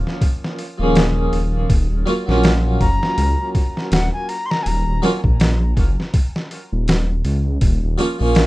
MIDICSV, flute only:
0, 0, Header, 1, 2, 480
1, 0, Start_track
1, 0, Key_signature, -6, "minor"
1, 0, Tempo, 740741
1, 1094, Time_signature, 4, 2, 24, 8
1, 5486, End_track
2, 0, Start_track
2, 0, Title_t, "Flute"
2, 0, Program_c, 0, 73
2, 1818, Note_on_c, 0, 82, 107
2, 2270, Note_off_c, 0, 82, 0
2, 2545, Note_on_c, 0, 78, 83
2, 2667, Note_off_c, 0, 78, 0
2, 2679, Note_on_c, 0, 80, 88
2, 2779, Note_on_c, 0, 82, 100
2, 2789, Note_off_c, 0, 80, 0
2, 2889, Note_on_c, 0, 84, 92
2, 2896, Note_off_c, 0, 82, 0
2, 2920, Note_on_c, 0, 82, 100
2, 2927, Note_off_c, 0, 84, 0
2, 2999, Note_on_c, 0, 80, 92
2, 3006, Note_off_c, 0, 82, 0
2, 3030, Note_on_c, 0, 82, 100
2, 3037, Note_off_c, 0, 80, 0
2, 3257, Note_off_c, 0, 82, 0
2, 5486, End_track
0, 0, End_of_file